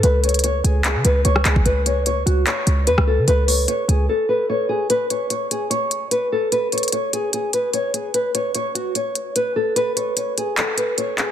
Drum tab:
HH |x---xxxxx---x---x---x---x---x---|x---x---x---x---x---x---x-------|x---o---x---x-------------------|x---x---x---x---x---x---x-------|
CP |----------------x-----------x---|----------------x---------------|--------------------------------|--------------------------------|
SD |--------------------------r-----|--------------------------r-----|--------------------------------|--------------------------------|
BD |------------------------------o-|--------------------------------|--------------------------------|--------------------------------|

HH |x---xxxxx---x---x---x---x---x---|x---x---x---x---x---x---x-------|x---x---x---x---x---x---x---x---|
CP |--------------------------------|--------------------------------|----------------x-----------x---|
SD |--------------------------------|--------------------------------|--------------------------------|
BD |--------------------------------|--------------------------------|--------------------------------|